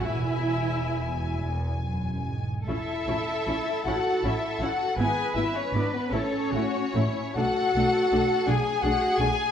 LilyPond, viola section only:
\new Staff \with { instrumentName = "Viola section" } { \time 6/8 \key a \major \tempo 4. = 51 e'4. r4. | <cis' e'>8 <cis' e'>8 <cis' e'>8 <cis' e'>8 <cis' e'>8 <cis' e'>8 | <b e'>8 <b e'>8 <b e'>8 <a e'>8 <a e'>8 <a e'>8 | <a d'>8 <a d'>8 <a d'>8 <a d'>8 <a d'>8 <a d'>8 | }